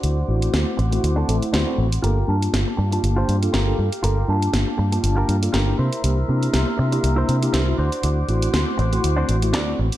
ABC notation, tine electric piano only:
X:1
M:4/4
L:1/16
Q:"Swing 16ths" 1/4=120
K:Gdor
V:1 name="Tine electric piano"
[A,CE^F] z [A,CEF]4- [A,CEF] [A,CEF]3 [A,CEA]2 [A,CEF] [A,CEF]2 z | [B,DFA] z [B,DFa]4- [B,DFa] [B,DFa]4 [B,DFA]2 [B,DFA]2 z | [B,DFA] z [B,DFa]4- [B,DFa] [B,DFa]4 [B,DFA]2 [B,DEG]2 z | [B,DEG] z [B,DEG]4- [B,DEG] [B,DEG]4 [B,DEG]2 [A,CE^F]2 z |
[A,CE^F] z [A,CEF]4- [A,CEF] [A,CEF]4 [A,CEF]2 [A,CEF]2 z |]